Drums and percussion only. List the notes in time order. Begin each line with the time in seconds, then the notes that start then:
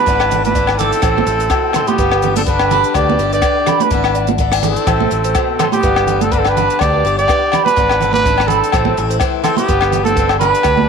0.07 kick, closed hi-hat
0.20 cross-stick, low agogo
0.31 closed hi-hat, low conga
0.45 closed hi-hat, high conga
0.55 kick, closed hi-hat
0.67 cross-stick, low agogo
0.79 closed hi-hat, low conga
0.92 closed hi-hat
1.02 kick, cross-stick, closed hi-hat, low agogo
1.18 high conga
1.27 closed hi-hat
1.40 closed hi-hat
1.50 kick, cross-stick, closed hi-hat, low agogo
1.73 cross-stick, closed hi-hat, low conga, low agogo
1.87 closed hi-hat, high conga
1.98 kick, closed hi-hat
2.11 cross-stick, low agogo
2.22 closed hi-hat, low conga
2.36 closed hi-hat, high conga
2.46 kick, closed hi-hat
2.59 cross-stick, low agogo
2.71 closed hi-hat, low conga
2.84 closed hi-hat
2.94 kick, cross-stick, closed hi-hat, low agogo
3.10 high conga
3.19 closed hi-hat
3.33 closed hi-hat
3.42 kick, cross-stick, closed hi-hat, low agogo
3.66 cross-stick, closed hi-hat, low conga, low agogo
3.80 closed hi-hat, high conga
3.91 kick, closed hi-hat
4.04 cross-stick, low agogo
4.15 closed hi-hat
4.27 closed hi-hat, high conga
4.38 kick, closed hi-hat
4.52 cross-stick, low agogo
4.63 closed hi-hat, low conga
4.76 closed hi-hat
4.87 kick, cross-stick, closed hi-hat, low conga, low agogo
5.00 high conga
5.11 closed hi-hat
5.24 closed hi-hat
5.35 kick, cross-stick, closed hi-hat, low agogo
5.59 cross-stick, closed hi-hat, low conga, low agogo
5.72 closed hi-hat, high conga
5.83 kick, closed hi-hat
5.96 cross-stick, low agogo
6.07 closed hi-hat, low conga
6.21 closed hi-hat, high conga
6.32 kick, closed hi-hat
6.45 cross-stick, low agogo
6.57 closed hi-hat, low conga
6.70 closed hi-hat
6.79 kick, cross-stick, closed hi-hat, low agogo
7.06 closed hi-hat
7.19 closed hi-hat
7.28 kick, cross-stick, closed hi-hat, low agogo
7.52 cross-stick, closed hi-hat, low conga, low agogo
7.66 closed hi-hat, high conga
7.77 kick, closed hi-hat
7.89 cross-stick, low agogo
8.01 closed hi-hat, low conga
8.13 closed hi-hat, high conga
8.26 kick, closed hi-hat
8.38 cross-stick, low agogo
8.48 closed hi-hat, low conga
8.64 closed hi-hat
8.72 kick, cross-stick, closed hi-hat, low agogo
8.85 high conga
8.97 closed hi-hat
9.11 closed hi-hat
9.20 kick, cross-stick, closed hi-hat, low agogo
9.44 cross-stick, closed hi-hat, low conga, low agogo
9.57 closed hi-hat, high conga
9.68 kick, closed hi-hat
9.81 cross-stick, low agogo
9.92 closed hi-hat, low conga
10.05 closed hi-hat, high conga
10.17 kick, closed hi-hat
10.29 cross-stick, low agogo
10.41 closed hi-hat, low conga
10.55 closed hi-hat
10.63 kick, cross-stick, closed hi-hat, low agogo
10.77 high conga